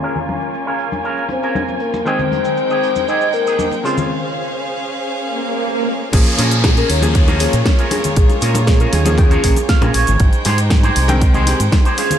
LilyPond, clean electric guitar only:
\new Staff \with { instrumentName = "Clean electric guitar" } { \time 4/4 \key bes \dorian \tempo 4 = 118 << { r1 | r1 | r1 | r1 |
r4. aes''8 g''4 f''8 des''8 | r1 | } \\ { <des' aes' bes'>16 r4 <des' aes' bes'>16 r8 <des' aes' bes'>8 r16 <des' aes' bes'>16 r4 | <c' g' aes'>16 r4 <c' g' aes'>16 r8 <c' g' aes'>8 r16 <c' g' aes'>16 r8 <des' f' c''>8 | r1 | r8 <des' f' aes' bes'>16 r8 <des' f' aes' bes'>8 r8 <des' f' aes' bes'>8 r8 <des' f' aes' bes'>8. |
r8 <des' f' aes' bes'>16 r8 <des' f' aes' bes'>8 r8 <des' f' aes' bes'>8 r8 <des' f' aes' bes'>8. | r8 <ees' g' aes' c''>16 r8 <ees' g' aes' c''>8 r8 <ees' g' aes' c''>8 r8 <ees' g' aes' c''>16 <des' f' aes' c''>8 | } >> }